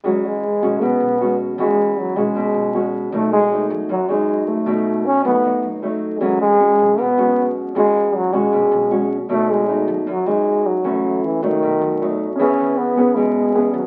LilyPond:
<<
  \new Staff \with { instrumentName = "Grand piano" } { \time 4/4 \key e \major \tempo 4 = 156 r1 | r1 | r1 | r1 |
r1 | r1 | r1 | r1 |
<cis' gis' b' e''>1 | }
  \new Staff \with { instrumentName = "Nylon-string guitar" } { \time 4/4 \key e \major << { <gis cis' fis'>4 r8 <gis cis' fis'>4. <gis cis' fis'>4 | <gis cis' fis'>4. <gis cis' fis'>4. <gis cis' fis'>4 | <fis a dis'>8 r8 <fis a dis'>4 r8 <fis dis'>4. | <fis a dis'>4 r8 <fis a dis'>4. <fis a dis'>4 |
<gis cis' fis'>4 <gis cis' fis'>4 r8 <gis cis' fis'>4. | <gis cis' fis'>4. <gis cis' fis'>4. <gis cis' fis'>8 r8 | <fis a dis'>4 <fis a dis'>4 r8 <fis dis'>4. | <e a cis'>4. <fis a dis'>4. <fis a dis'>8 r8 |
<b cis' gis'>4. <b cis' gis'>4. <b cis' gis'>8 r8 | } \\ { e2 b,2 | e2 b,2 | b,2 fis,2 | b,2 fis,2 |
e2 b,2 | e2 b,2 | b,2 fis,2 | fis,2 b,2 |
e2 b,2 | } >> }
  \new Staff \with { instrumentName = "Trombone" } { \clef bass \time 4/4 \key e \major fis8 gis4. b4. r8 | gis4 fis8 gis2 r8 | a8 gis4 r8 fis8 gis4 a8~ | a4 cis'8 b4~ b16 r4 r32 gis32 |
fis8 gis4. b4. r8 | gis4 fis8 gis2 r8 | a8 gis4 r8 fis8 gis4 fis8~ | fis4 e8 dis2 r8 |
cis'4 b4 gis4. fis8 | }
  \new Staff \with { instrumentName = "Upright bass" } { \clef bass \time 4/4 \key e \major e,4. b,,8 b,,16 r16 b,,4. | e,4. b,,8 b,,16 r16 b,,4. | b,,4. fis,8 fis,16 r16 fis,4. | b,,4. fis,8 fis,16 r16 fis,4. |
e,4. b,,8 b,,16 r16 b,,4. | e,4. b,,8 b,,16 r16 b,,4. | b,,4. fis,8 fis,16 r16 fis,4. | fis,,4. cis,8 b,,16 r16 fis,4. |
e,8 e,4. b,,4. e,8 | }
>>